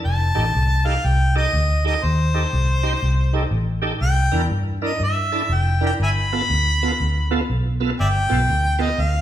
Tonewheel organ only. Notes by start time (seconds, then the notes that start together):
0.35 D#4 G4 A4
0.85 D#4 G4 A4
1.35 D#4 G4 A4
1.85 D#4 G4 A4
2.34 D#4 G4 A4
2.83 D#4 G4 C5
3.33 D#4 G4 A4
3.82 D#4 G4 A4
4.32 D4 E4 A#4
4.82 D4 E4 A#4
5.32 D4 E4 A4
5.81 D4 E4 A#4
6.33 B3 F4 A4
6.83 B3 F4 A4
7.31 B3 F4 A4
7.80 B3 F4 A4
8.29 B3 F4 A4
8.79 B3 F4 A4